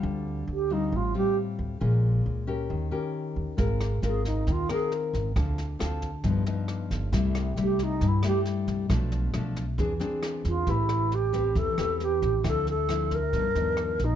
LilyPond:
<<
  \new Staff \with { instrumentName = "Alto flute" } { \time 4/4 \key d \dorian \tempo 4 = 135 r4 g'8 ees'8 f'8 g'8 r4 | r1 | r4 aes'8 ees'8 f'8 aes'8 r4 | r1 |
r4 g'8 ees'8 e'8 g'8 r4 | r2. r8 f'8 | \key a \minor e'4 g'4 a'4 g'4 | a'8 a'4 bes'2 dis'8 | }
  \new Staff \with { instrumentName = "Nylon-string guitar" } { \time 4/4 \key d \dorian << { <g c' f'>4 r8 <g c' f'>4 <g c' f'>4. | <aes des' f'>4. <des' g' bes'>4 <des' g' bes'>4. | <c' f' bes'>4 <c' f' bes'>4. <c' f' bes'>4. | <c' f' a'>8 r8 <c' f' a'>8 r8 <f b dis'>8 <f b dis'>4. |
<g a e'>4 <g a e'>4 r8 <g a e'>4. | <f a d'>4 <f a d'>8 r8 <c' d' gis'>8 <c' d' gis'>4. | \key a \minor <c' g' b'>4. <c' g' b'>4 <c' g' b'>4. | <f c' e'>8 r8 <f c' e'>8 r8 <f b dis'>8 <f b dis'>4. | } \\ { d2 a,2 | bes,2 ees2 | aes2 ees2 | d2 g,2 |
c2 g,2 | b,2 e2 | a2 e2 | d2 g,2 | } >> }
  \new Staff \with { instrumentName = "Upright bass" } { \clef bass \time 4/4 \key d \dorian d,4 d,4 a,,8 r4 d,8 | bes,,4 des,4 ees,8 r4 ees,8 | aes,,4 aes,,4 ees,8 r4 aes,,8 | d,4 d,4 g,,8 r4 g,,8 |
c,4 c,4 g,8 r4 c,8 | b,,4 b,,4 e,8 r4 e,8 | \key a \minor a,,2 e,16 r16 e,4 a,,8 | d,2 g,,16 r16 dis,4 ais,,8 | }
  \new DrumStaff \with { instrumentName = "Drums" } \drummode { \time 4/4 r4 r4 r4 r4 | r4 r4 r4 r4 | <bd sn>8 <ss sn>8 sn8 <bd sn>8 <bd sn>8 <ss sn>8 sn8 <bd sn>8 | <bd ss sn>8 sn8 <ss sn>8 <bd sn>8 <bd sn>8 sn8 <ss sn>8 <bd sn>8 |
<bd sn>8 <ss sn>8 sn8 <bd sn>8 <bd sn>8 <ss sn>8 sn8 <bd sn>8 | <bd ss sn>8 sn8 <ss sn>8 <bd sn>8 <bd sn>8 sn8 <ss sn>8 <bd sn>8 | <bd sn>8 <ss sn>8 sn8 <bd sn>8 <bd sn>8 <ss sn>8 sn8 <bd sn>8 | <bd ss sn>8 sn8 <ss sn>8 <bd sn>8 <bd sn>8 sn8 <ss sn>8 <bd sn>8 | }
>>